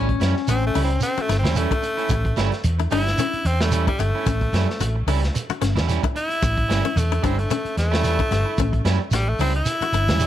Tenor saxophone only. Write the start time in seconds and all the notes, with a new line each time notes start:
0.50 C4
0.67 A3
0.84 C4
1.03 C4
1.21 A3
1.39 C4
1.57 A3
2.92 E4
3.46 C4
3.61 A3
3.88 G3
4.00 A3
6.17 E4
6.98 A3
7.24 C4
7.39 A3
7.79 A3
9.14 G3
9.29 A3
9.41 C4
9.56 E4